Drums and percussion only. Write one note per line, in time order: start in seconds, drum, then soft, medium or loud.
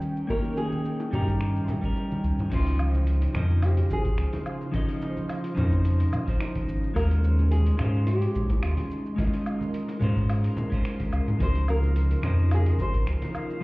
0.02 shaker medium
0.17 shaker soft
0.30 kick loud
0.30 high bongo medium
0.30 high conga medium
0.30 shaker soft
0.44 shaker soft
0.57 high bongo soft
0.57 shaker medium
0.72 high conga medium
0.72 shaker soft
0.85 shaker soft
1.00 high bongo medium
1.00 shaker soft
1.13 high conga medium
1.13 low conga medium
1.13 shaker medium
1.28 kick medium
1.28 high bongo soft
1.28 shaker soft
1.41 finger snap medium
1.41 shaker soft
1.56 shaker soft
1.68 high bongo medium
1.68 high conga medium
1.68 low conga medium
1.68 shaker medium
1.83 kick loud
1.83 shaker soft
1.96 high bongo medium
1.96 shaker soft
2.11 high conga medium
2.11 shaker soft
2.24 shaker medium
2.39 high bongo medium
2.39 shaker soft
2.52 kick loud
2.52 open hi-hat medium
2.52 crash loud
2.52 high bongo medium
2.52 high conga medium
2.52 shaker soft
2.66 open hi-hat soft
2.66 shaker soft
2.79 low woodblock medium
2.79 shaker medium
2.94 high bongo medium
2.94 high conga medium
2.94 shaker soft
3.07 open hi-hat medium
3.07 shaker soft
3.21 open hi-hat soft
3.21 high bongo soft
3.21 shaker soft
3.35 finger snap medium
3.35 high conga medium
3.35 low conga medium
3.35 shaker medium
3.50 shaker soft
3.62 open hi-hat medium
3.62 high bongo medium
3.62 low woodblock medium
3.62 shaker soft
3.77 open hi-hat soft
3.77 shaker soft
3.90 high bongo medium
3.90 high conga medium
3.90 shaker medium
4.05 kick loud
4.05 open hi-hat soft
4.05 shaker soft
4.18 finger snap medium
4.18 open hi-hat medium
4.18 shaker soft
4.33 open hi-hat soft
4.33 high bongo medium
4.33 high conga medium
4.46 low woodblock medium
4.46 shaker medium
4.61 high bongo medium
4.61 shaker soft
4.73 kick loud
4.73 open hi-hat medium
4.73 high conga medium
4.73 shaker soft
4.89 open hi-hat soft
4.89 shaker soft
5.02 high bongo medium
5.02 shaker medium
5.17 high conga medium
5.17 shaker soft
5.29 open hi-hat medium
5.29 high bongo medium
5.29 low woodblock medium
5.29 shaker soft
5.44 open hi-hat soft
5.44 shaker soft
5.57 high conga loud
5.57 low conga loud
5.57 shaker medium
5.72 kick medium
5.72 high bongo medium
5.72 shaker soft
5.85 open hi-hat medium
5.85 shaker soft
6.00 open hi-hat soft
6.00 high bongo soft
6.00 shaker soft
6.12 high conga medium
6.12 low conga medium
6.12 low woodblock medium
6.12 shaker medium
6.27 kick loud
6.27 open hi-hat soft
6.27 shaker soft
6.40 finger snap medium
6.40 open hi-hat medium
6.40 high bongo medium
6.40 shaker soft
6.55 kick medium
6.55 open hi-hat soft
6.55 high conga medium
6.68 high bongo soft
6.68 shaker medium
6.83 shaker soft
6.96 kick loud
6.96 open hi-hat medium
6.96 high conga loud
6.96 low woodblock medium
6.96 shaker soft
7.11 open hi-hat soft
7.11 high bongo medium
7.11 shaker soft
7.24 shaker medium
7.39 high bongo medium
7.39 high conga medium
7.39 shaker soft
7.52 open hi-hat medium
7.52 shaker soft
7.67 open hi-hat soft
7.67 shaker soft
7.79 finger snap medium
7.79 high bongo medium
7.79 high conga loud
7.79 low conga medium
7.79 low woodblock medium
7.79 shaker medium
7.94 shaker soft
8.07 open hi-hat medium
8.07 high bongo soft
8.07 shaker soft
8.22 open hi-hat soft
8.22 shaker soft
8.35 high conga medium
8.35 shaker medium
8.50 kick loud
8.50 open hi-hat soft
8.50 high bongo medium
8.50 shaker soft
8.63 finger snap medium
8.63 open hi-hat medium
8.63 low woodblock medium
8.63 shaker soft
8.77 open hi-hat soft
8.77 high bongo medium
8.77 high conga loud
8.91 shaker medium
9.06 shaker soft
9.18 kick loud
9.18 open hi-hat medium
9.18 high bongo medium
9.18 high conga loud
9.18 shaker soft
9.34 open hi-hat soft
9.34 shaker soft
9.46 high bongo soft
9.46 low woodblock medium
9.46 shaker medium
9.61 high conga medium
9.61 shaker soft
9.74 open hi-hat medium
9.74 shaker soft
9.88 open hi-hat soft
9.88 high bongo medium
9.88 shaker soft
10.00 high conga medium
10.00 low conga medium
10.00 shaker medium
10.16 kick medium
10.16 high bongo soft
10.16 shaker soft
10.29 open hi-hat medium
10.29 low woodblock medium
10.29 shaker soft
10.44 open hi-hat soft
10.44 shaker soft
10.57 high bongo medium
10.57 high conga medium
10.57 low conga medium
10.57 shaker medium
10.72 kick loud
10.72 open hi-hat soft
10.72 shaker soft
10.85 finger snap medium
10.85 open hi-hat medium
10.85 high bongo soft
10.85 shaker soft
11.00 kick medium
11.00 open hi-hat soft
11.00 high conga medium
11.00 shaker soft
11.13 low woodblock medium
11.13 shaker medium
11.28 high bongo medium
11.28 shaker soft
11.40 kick loud
11.40 open hi-hat medium
11.40 high bongo medium
11.40 high conga loud
11.40 shaker soft
11.55 open hi-hat soft
11.55 shaker soft
11.68 low woodblock medium
11.68 shaker medium
11.83 high bongo medium
11.83 high conga medium
11.83 shaker soft
11.96 open hi-hat medium
11.96 shaker soft
12.11 open hi-hat soft
12.11 high bongo soft
12.11 shaker soft
12.23 finger snap medium
12.23 high conga medium
12.23 low conga medium
12.23 shaker medium
12.38 shaker soft
12.51 open hi-hat medium
12.51 high bongo medium
12.51 low woodblock medium
12.51 shaker soft
12.66 open hi-hat soft
12.66 shaker soft
12.79 high bongo soft
12.79 high conga medium
12.79 shaker medium
12.94 kick loud
12.94 open hi-hat soft
12.94 shaker soft
13.07 finger snap medium
13.07 open hi-hat medium
13.07 shaker soft
13.22 open hi-hat soft
13.22 high bongo medium
13.22 high conga medium
13.35 low woodblock medium
13.35 shaker medium
13.50 high bongo soft
13.50 shaker soft